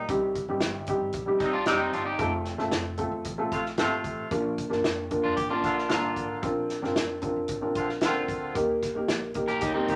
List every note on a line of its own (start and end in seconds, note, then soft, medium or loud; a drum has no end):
0.08 0.43 C2 loud
0.08 0.38 G3 medium
0.08 0.39 C4 medium
0.08 0.39 D#4 medium
0.08 0.39 G4 medium
0.08 kick loud
0.08 closed hi-hat medium
0.35 kick medium
0.35 closed hi-hat medium
0.48 0.59 G#1 medium
0.48 0.78 G3 medium
0.48 0.78 C4 medium
0.48 0.79 D#4 medium
0.48 0.79 G4 medium
0.60 0.95 G1 medium
0.60 snare loud
0.60 closed hi-hat medium
0.86 1.18 G3 medium
0.86 1.18 C4 medium
0.86 1.18 D#4 medium
0.86 1.19 G4 medium
0.86 kick medium
0.86 closed hi-hat medium
1.01 1.12 G1 medium
1.13 1.36 A#1 medium
1.13 kick medium
1.13 closed hi-hat medium
1.26 1.57 G3 medium
1.26 1.57 C4 medium
1.26 1.57 D#4 medium
1.26 1.58 G4 medium
1.40 1.63 C2 medium
1.40 1.52 C3 medium
1.40 1.53 G3 medium
1.40 1.53 C4 medium
1.40 1.53 D#4 medium
1.40 1.52 D#4 medium
1.40 kick medium
1.40 closed hi-hat medium
1.53 1.66 D4 medium
1.53 1.66 F4 medium
1.66 1.89 F1 medium
1.66 2.17 C3 medium
1.66 2.06 G3 medium
1.66 2.17 G3 medium
1.66 2.07 C4 medium
1.66 2.07 D#4 medium
1.66 2.17 D#4 medium
1.66 1.78 D#4 medium
1.66 1.79 G4 medium
1.66 2.07 G4 medium
1.66 snare loud
1.66 closed hi-hat medium
1.80 1.92 C4 medium
1.80 1.92 D#4 medium
1.93 2.16 G1 medium
1.93 2.05 D4 medium
1.93 2.05 F4 medium
1.93 closed hi-hat medium
2.06 2.31 D#4 medium
2.06 2.31 G4 medium
2.19 2.53 F1 loud
2.19 2.49 A3 medium
2.19 2.50 C4 medium
2.19 2.50 F4 medium
2.19 2.50 A4 medium
2.19 kick loud
2.19 closed hi-hat medium
2.45 snare soft
2.45 closed hi-hat medium
2.58 2.70 G1 medium
2.58 2.89 A3 medium
2.58 2.89 C4 medium
2.58 2.90 F4 medium
2.58 2.90 A4 medium
2.58 snare soft
2.71 3.06 F1 medium
2.71 snare loud
2.71 closed hi-hat medium
2.97 3.28 A3 medium
2.97 3.28 C4 medium
2.97 3.29 F4 medium
2.97 3.29 A4 medium
2.97 kick medium
2.97 closed hi-hat medium
3.11 3.23 F1 medium
3.24 3.48 A1 medium
3.24 kick medium
3.24 closed hi-hat medium
3.38 3.68 A3 medium
3.38 3.69 C4 medium
3.38 3.69 F4 medium
3.38 3.69 A4 medium
3.52 3.74 A#1 medium
3.52 3.63 C3 medium
3.52 3.63 A3 medium
3.52 3.63 F4 medium
3.52 kick medium
3.52 closed hi-hat medium
3.66 snare soft
3.77 4.00 G1 medium
3.77 4.29 C3 medium
3.77 4.18 A3 medium
3.77 4.29 A3 medium
3.77 4.18 C4 medium
3.77 4.19 F4 medium
3.77 4.29 F4 medium
3.77 4.19 A4 medium
3.77 snare loud
3.77 closed hi-hat medium
4.04 4.27 A1 medium
4.04 kick medium
4.04 closed hi-hat medium
4.31 4.65 A#1 loud
4.31 4.61 A#3 medium
4.31 4.62 D4 medium
4.31 4.62 F4 medium
4.31 4.62 A#4 medium
4.31 kick loud
4.31 closed hi-hat medium
4.58 kick medium
4.58 closed hi-hat medium
4.70 4.82 G1 medium
4.70 5.00 A#3 medium
4.70 5.01 D4 medium
4.70 5.01 F4 medium
4.70 5.01 A#4 medium
4.70 snare soft
4.84 5.18 F1 medium
4.84 snare loud
4.84 closed hi-hat medium
5.11 5.41 A#3 medium
5.11 5.41 D4 medium
5.11 5.41 F4 medium
5.11 5.42 A#4 medium
5.11 kick medium
5.11 closed hi-hat medium
5.24 5.36 F1 medium
5.24 5.37 D4 medium
5.24 5.36 F4 medium
5.37 5.60 G#1 medium
5.37 5.49 G4 medium
5.37 kick medium
5.37 closed hi-hat medium
5.50 5.80 A#3 medium
5.50 5.81 D4 medium
5.50 6.26 D4 medium
5.50 6.26 F4 medium
5.50 5.81 F4 medium
5.50 5.81 A#4 medium
5.64 5.86 A#1 medium
5.64 5.75 D3 medium
5.64 5.75 A#3 medium
5.64 5.75 F4 medium
5.64 kick medium
5.64 closed hi-hat medium
5.78 snare soft
5.89 6.13 G1 medium
5.89 6.40 D3 medium
5.89 6.30 A#3 medium
5.89 6.40 A#3 medium
5.89 6.30 D4 medium
5.89 6.40 F4 medium
5.89 6.30 F4 medium
5.89 6.30 A#4 medium
5.89 snare loud
5.89 closed hi-hat medium
6.16 6.39 G#1 medium
6.16 kick medium
6.16 closed hi-hat medium
6.42 6.77 A#1 medium
6.42 6.73 C4 medium
6.42 6.73 D4 medium
6.42 6.74 F4 medium
6.42 6.74 A#4 medium
6.42 kick loud
6.42 closed hi-hat medium
6.69 snare soft
6.69 closed hi-hat medium
6.82 6.94 G1 medium
6.82 7.13 C4 medium
6.82 7.13 D4 medium
6.82 7.14 F4 medium
6.82 7.14 A#4 medium
6.82 snare soft
6.96 7.31 F1 medium
6.96 snare loud
6.96 closed hi-hat medium
7.22 7.53 C4 medium
7.22 7.53 D4 medium
7.22 7.53 F4 medium
7.22 7.53 A#4 medium
7.22 kick medium
7.22 closed hi-hat medium
7.36 7.48 F1 medium
7.48 7.72 G#1 medium
7.48 kick medium
7.48 closed hi-hat medium
7.61 7.92 C4 medium
7.61 7.93 D4 medium
7.61 7.93 F4 medium
7.61 7.93 A#4 medium
7.75 7.99 A#1 medium
7.75 7.88 D3 medium
7.75 7.88 C4 medium
7.75 7.88 F4 medium
7.75 kick medium
7.75 closed hi-hat medium
7.89 snare soft
8.01 8.26 C2 medium
8.01 8.54 D3 medium
8.01 8.43 C4 medium
8.01 8.54 C4 medium
8.01 8.43 D4 medium
8.01 8.43 F4 medium
8.01 8.54 F4 medium
8.01 8.43 A#4 medium
8.01 snare loud
8.01 closed hi-hat medium
8.28 8.52 D2 medium
8.28 kick medium
8.28 closed hi-hat medium
8.55 8.90 D#2 medium
8.55 8.85 A#3 medium
8.55 8.86 D#4 medium
8.55 8.86 G4 medium
8.55 8.86 A#4 medium
8.55 kick loud
8.55 closed hi-hat medium
8.82 kick medium
8.82 snare soft
8.82 closed hi-hat medium
8.95 9.07 C2 medium
8.95 9.26 A#3 medium
8.95 9.26 D#4 medium
8.95 9.26 G4 medium
8.95 9.27 A#4 medium
9.08 9.43 A#1 medium
9.08 snare loud
9.08 closed hi-hat medium
9.34 9.65 A#3 medium
9.34 9.66 D#4 medium
9.34 9.66 G4 medium
9.34 9.66 A#4 medium
9.34 kick medium
9.34 closed hi-hat medium
9.48 9.60 A#1 medium
9.48 9.60 G4 medium
9.48 9.61 A#4 medium
9.48 closed hi-hat soft
9.61 9.85 D2 medium
9.61 9.73 D#4 medium
9.61 9.74 G4 medium
9.61 kick medium
9.61 closed hi-hat medium
9.74 9.96 A#3 medium
9.74 9.96 C4 medium
9.74 9.96 D#4 medium
9.74 9.96 G4 medium
9.74 9.96 A#4 medium
9.88 9.96 D#2 medium
9.88 9.96 D#3 medium
9.88 9.96 A#3 medium
9.88 9.96 G4 medium
9.88 kick medium
9.88 closed hi-hat medium